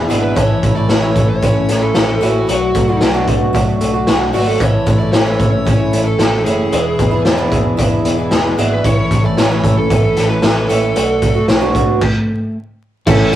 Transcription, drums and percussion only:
0.10 closed hi-hat
0.36 kick, closed hi-hat
0.63 kick, closed hi-hat
0.89 snare, closed hi-hat
1.16 kick, closed hi-hat
1.42 kick, closed hi-hat
1.68 snare, closed hi-hat
1.94 snare, closed hi-hat
2.22 closed hi-hat
2.49 closed hi-hat
2.75 kick, closed hi-hat
3.01 snare, closed hi-hat
3.28 kick, closed hi-hat
3.55 kick, closed hi-hat
3.81 closed hi-hat
4.07 snare, closed hi-hat
4.34 open hi-hat
4.60 kick, closed hi-hat
4.86 kick, closed hi-hat
5.13 snare, closed hi-hat
5.40 kick, closed hi-hat
5.67 kick, closed hi-hat
5.93 closed hi-hat
6.19 snare, closed hi-hat
6.46 closed hi-hat
6.72 closed hi-hat
6.99 kick, closed hi-hat
7.25 snare, closed hi-hat
7.52 kick, closed hi-hat
7.79 kick, closed hi-hat
8.05 closed hi-hat
8.31 snare, closed hi-hat
8.58 closed hi-hat
8.84 kick, closed hi-hat
9.11 kick, closed hi-hat
9.37 snare, closed hi-hat
9.64 kick, closed hi-hat
9.90 kick, closed hi-hat
10.16 snare, closed hi-hat
10.42 snare, closed hi-hat
10.70 closed hi-hat
10.96 closed hi-hat
11.22 kick, closed hi-hat
11.48 snare, closed hi-hat
11.75 kick, closed hi-hat
12.01 kick, crash
13.07 kick, crash, tambourine

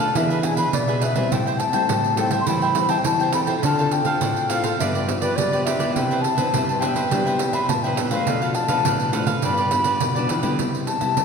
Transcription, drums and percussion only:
0.15 pandeiro
0.30 pandeiro
0.43 pandeiro
0.57 pandeiro
0.73 pandeiro
0.88 pandeiro
1.02 pandeiro
1.16 pandeiro
1.32 pandeiro
1.47 pandeiro
1.60 pandeiro
1.73 pandeiro
1.89 pandeiro
2.04 pandeiro
2.17 pandeiro
2.31 pandeiro
2.47 pandeiro
2.62 pandeiro
2.75 pandeiro
2.89 pandeiro
3.04 pandeiro
3.20 pandeiro
3.33 pandeiro
3.47 pandeiro
3.63 pandeiro
3.79 pandeiro
3.91 pandeiro
4.05 pandeiro
4.21 pandeiro
4.36 pandeiro
4.50 pandeiro
4.64 pandeiro
4.80 pandeiro
4.95 pandeiro
5.09 pandeiro
5.22 pandeiro
5.38 pandeiro
5.53 pandeiro
5.67 pandeiro
5.80 pandeiro
5.96 pandeiro
6.11 pandeiro
6.24 pandeiro
6.38 pandeiro
6.54 pandeiro
6.69 pandeiro
6.82 pandeiro
6.96 pandeiro
7.11 pandeiro
7.27 pandeiro
7.39 pandeiro
7.53 pandeiro
7.69 pandeiro
7.84 pandeiro
7.97 pandeiro
8.11 pandeiro
8.27 pandeiro
8.42 pandeiro
8.55 pandeiro
8.68 pandeiro
8.85 pandeiro
9.00 pandeiro
9.13 pandeiro
9.27 pandeiro
9.42 pandeiro
9.58 pandeiro
9.71 pandeiro
9.84 pandeiro
10.00 pandeiro
10.16 pandeiro
10.29 pandeiro
10.43 pandeiro
10.59 pandeiro
10.75 pandeiro
10.87 pandeiro
11.01 pandeiro
11.17 pandeiro

